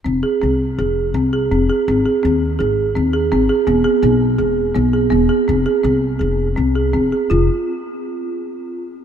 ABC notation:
X:1
M:5/4
L:1/8
Q:1/4=166
K:Ablyd
V:1 name="Marimba"
C A C2 A2 C A C A | C A C2 A2 C A C A | =B, ^G B,2 G2 B, G B, G | C A C2 A2 C A C A |
F z8 z |]
V:2 name="Upright bass" clef=bass
F,,, z C,,2 F,,,2 C,,2 F,,, z | A,,, z E,,2 A,,,2 E,,2 A,,, z | =E,,, z =B,,,2 E,,,2 B,,,2 E,,, z | F,,, z C,,2 F,,,2 C,,2 F,,, z |
F,,, z8 z |]